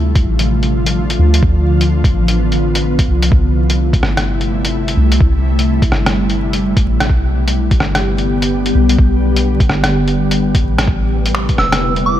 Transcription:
0.00 0.24 D2 loud
0.00 3.28 D3 medium
0.00 3.28 F3 medium
0.00 1.39 A3 medium
0.00 3.28 F4 medium
0.15 kick loud
0.15 closed hi-hat soft
0.25 1.18 A1 medium
0.39 closed hi-hat medium
0.63 closed hi-hat soft
0.86 closed hi-hat medium
1.10 closed hi-hat soft
1.19 1.41 D2 loud
1.34 closed hi-hat medium
1.43 2.13 D2 medium
1.43 3.30 B3 medium
1.43 kick loud
1.81 closed hi-hat soft
2.04 kick loud
2.04 closed hi-hat soft
2.13 3.07 A1 medium
2.28 closed hi-hat medium
2.52 closed hi-hat soft
2.75 closed hi-hat soft
2.99 kick loud
2.99 closed hi-hat soft
3.08 3.31 C2 medium
3.22 closed hi-hat soft
3.31 4.02 C2 medium
3.31 7.06 C3 medium
3.31 12.20 G3 medium
3.31 7.06 A3 medium
3.31 7.06 E4 medium
3.31 kick loud
3.70 closed hi-hat soft
3.93 kick medium
3.93 closed hi-hat soft
4.03 4.96 G1 medium
4.03 cross-stick soft
4.17 cross-stick medium
4.17 closed hi-hat soft
4.41 closed hi-hat soft
4.65 closed hi-hat medium
4.88 closed hi-hat soft
4.97 5.19 C2 loud
5.12 closed hi-hat soft
5.20 5.90 C2 medium
5.20 kick loud
5.59 closed hi-hat soft
5.82 kick medium
5.82 closed hi-hat soft
5.92 6.85 G1 medium
5.92 cross-stick soft
6.06 cross-stick medium
6.06 closed hi-hat soft
6.30 closed hi-hat soft
6.53 closed hi-hat soft
6.77 kick medium
6.77 closed hi-hat soft
6.86 7.08 A1 medium
7.00 cross-stick medium
7.00 closed hi-hat soft
7.09 7.80 B1 medium
7.09 10.84 D3 medium
7.09 10.84 B3 medium
7.09 10.84 G4 medium
7.09 kick loud
7.48 closed hi-hat medium
7.71 kick medium
7.71 closed hi-hat soft
7.80 8.74 G1 medium
7.80 cross-stick soft
7.95 cross-stick medium
7.95 closed hi-hat medium
8.18 closed hi-hat soft
8.42 closed hi-hat soft
8.66 closed hi-hat soft
8.75 8.97 B1 loud
8.89 closed hi-hat soft
8.99 9.68 B1 loud
8.99 kick loud
9.36 closed hi-hat medium
9.60 kick medium
9.60 closed hi-hat soft
9.69 10.63 G1 medium
9.69 cross-stick soft
9.84 cross-stick medium
9.84 closed hi-hat medium
10.08 closed hi-hat soft
10.31 closed hi-hat medium
10.55 kick medium
10.55 closed hi-hat soft
10.64 10.86 A1 medium
10.78 cross-stick medium
10.78 closed hi-hat medium
10.88 11.58 A1 medium
10.88 12.20 C3 medium
10.88 12.20 A3 medium
10.88 12.20 B3 medium
10.88 12.20 E4 medium
10.88 12.20 B4 medium
10.88 kick loud
11.26 closed hi-hat medium
11.35 finger snap medium
11.49 kick loud
11.49 closed hi-hat soft
11.58 12.20 E1 medium
11.58 11.84 E6 medium
11.58 cross-stick soft
11.72 cross-stick medium
11.72 closed hi-hat medium
11.96 closed hi-hat soft
12.06 12.20 D6 medium

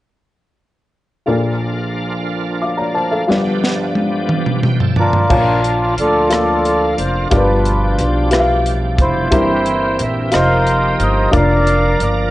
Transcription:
1.26 3.25 A#1 soft
1.26 3.25 A#2 soft
1.26 3.25 F3 soft
1.26 3.24 A#3 soft
1.26 3.25 D4 soft
1.26 3.24 F4 soft
1.26 3.25 F4 soft
1.26 2.59 A4 soft
1.26 2.59 A#4 soft
1.26 2.60 D5 soft
2.62 2.78 F5 soft
2.62 2.77 D6 soft
2.78 2.94 D5 soft
2.78 2.94 A#5 soft
2.95 3.11 C5 soft
2.95 3.11 A5 medium
3.12 3.44 A4 soft
3.12 3.43 F5 soft
3.27 5.26 G1 medium
3.27 5.26 G2 medium
3.27 5.26 F3 medium
3.27 4.60 B3 soft
3.27 5.26 B3 soft
3.27 4.60 D4 soft
3.27 5.25 F4 soft
3.27 3.35 F4 soft
3.27 5.26 G4 soft
3.27 5.27 D5 medium
3.27 snare soft
3.35 4.61 G4 medium
3.64 snare soft
3.95 high tom medium
4.29 mid tom medium
4.46 mid tom medium
4.62 4.79 B3 soft
4.62 4.78 G4 soft
4.62 4.94 G5 soft
4.62 mid tom medium
4.80 4.96 A4 medium
4.80 floor tom medium
4.96 5.12 D4 soft
4.96 5.95 F4 medium
4.96 5.61 A#4 medium
4.96 5.12 B4 medium
4.96 5.13 D5 medium
4.96 floor tom medium
5.00 5.95 D4 medium
5.13 5.31 F4 soft
5.13 5.46 D5 soft
5.13 floor tom medium
5.29 5.93 A#1 medium
5.29 6.27 A#2 soft
5.29 7.28 F3 soft
5.29 7.28 A#3 soft
5.29 5.37 C#4 soft
5.29 6.23 F4 medium
5.29 7.28 F4 medium
5.29 6.24 A#4 medium
5.29 5.37 C#5 medium
5.29 6.23 A5 medium
5.29 kick medium
5.29 crash medium
5.38 7.30 D4 soft
5.38 6.27 D5 medium
5.64 closed hi-hat soft
5.97 6.93 D2 medium
5.97 6.95 F4 medium
5.97 6.95 A4 medium
5.97 6.95 D5 medium
5.97 closed hi-hat soft
6.30 7.24 A#3 soft
6.30 7.23 F4 medium
6.30 7.23 A4 soft
6.30 7.24 D5 medium
6.30 cross-stick medium
6.30 closed hi-hat medium
6.65 closed hi-hat soft
6.98 7.29 F1 medium
6.98 7.29 C5 medium
6.98 closed hi-hat soft
7.31 7.94 G1 medium
7.31 8.28 G2 soft
7.31 9.28 F3 soft
7.31 7.38 A#3 soft
7.31 9.28 D4 soft
7.31 8.24 F4 medium
7.31 8.24 G4 medium
7.31 9.28 G4 medium
7.31 7.38 A#4 soft
7.31 8.04 B4 medium
7.31 8.25 D5 medium
7.31 kick medium
7.31 closed hi-hat medium
7.35 9.32 B2 soft
7.35 8.29 D4 medium
7.35 8.30 F4 medium
7.35 8.28 B4 medium
7.66 closed hi-hat soft
7.98 8.95 B1 medium
7.98 cross-stick soft
7.98 closed hi-hat soft
8.31 9.24 F4 medium
8.31 9.25 G4 medium
8.31 9.25 B4 medium
8.31 8.39 E5 medium
8.31 cross-stick medium
8.31 closed hi-hat medium
8.40 9.29 F5 medium
8.66 closed hi-hat soft
8.98 9.32 F1 medium
8.98 9.97 E4 medium
8.98 10.03 C5 medium
8.98 kick medium
8.98 closed hi-hat soft
9.31 9.95 G1 medium
9.31 10.28 G2 medium
9.31 10.33 E3 medium
9.31 10.31 A#3 soft
9.31 10.33 C4 soft
9.31 10.25 E4 medium
9.31 10.25 G4 medium
9.31 10.32 G4 medium
9.31 10.25 A#4 medium
9.31 10.25 C5 medium
9.31 kick medium
9.31 closed hi-hat medium
9.66 closed hi-hat soft
9.99 10.30 A#1 medium
9.99 10.34 E5 medium
9.99 closed hi-hat soft
10.31 10.96 F1 medium
10.31 11.31 F3 medium
10.31 11.32 A#3 soft
10.31 11.33 D#4 soft
10.31 11.25 F4 medium
10.31 11.25 G4 soft
10.31 11.33 G4 medium
10.31 11.26 A#4 medium
10.31 11.30 A#4 medium
10.31 11.30 C5 medium
10.31 11.26 D#5 medium
10.31 11.02 F5 medium
10.31 cross-stick medium
10.31 closed hi-hat medium
10.67 closed hi-hat soft
11.00 11.30 G1 medium
11.00 11.32 D#5 medium
11.00 closed hi-hat soft
11.31 11.96 F1 medium
11.31 12.31 F3 medium
11.31 12.31 A#3 soft
11.31 12.25 D4 medium
11.31 12.31 D4 soft
11.31 12.26 F4 medium
11.31 12.26 A#4 medium
11.31 12.31 A#4 medium
11.31 12.26 D5 medium
11.31 kick medium
11.31 closed hi-hat medium
11.36 12.31 A#4 medium
11.36 12.01 D5 medium
11.36 12.03 F5 medium
11.67 closed hi-hat soft
12.00 12.31 G1 medium
12.00 12.31 D5 medium
12.00 closed hi-hat soft

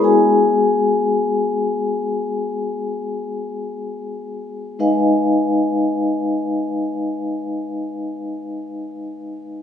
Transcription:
0.00 4.73 G#3 soft
0.00 4.73 B3 soft
0.00 4.74 F#4 soft
0.00 4.16 G#5 medium
0.05 4.13 G#4 soft
4.79 8.51 G#3 soft
4.79 8.51 D#4 soft
4.79 8.52 B4 soft
4.79 8.52 D#5 soft
4.79 8.52 F5 soft
4.79 8.52 G#5 soft

